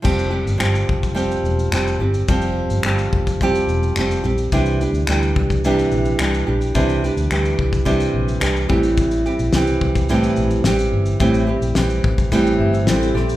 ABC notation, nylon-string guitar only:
X:1
M:4/4
L:1/8
Q:1/4=108
K:F
V:1 name="Nylon-string guitar"
[F,G,CG] [G,CG] [F,G,CG]2 [F,G,CG]2 [F,G,CG] [G,CG] | [F,G,CG]2 [F,G,CG]2 [F,G,CG]2 [F,G,CG] [G,CG] | [C,E,G,DG] [G,DG] [E,G,DG]2 [C,E,G,DG]2 [E,G,DG] [G,DG] | [C,E,G,DG] [G,DG] [E,G,DG]2 [C,E,G,DG]2 [E,G,DG] [A,,E,G,CG]- |
[A,,E,G,CG] [G,CG] [E,G,CG]2 [A,,E,G,CG]2 [E,G,CG]2 | [A,,E,G,CG] [G,CG] [E,G,CG]2 [A,,E,G,CG]2 [E,G,CG] [G,CG] |]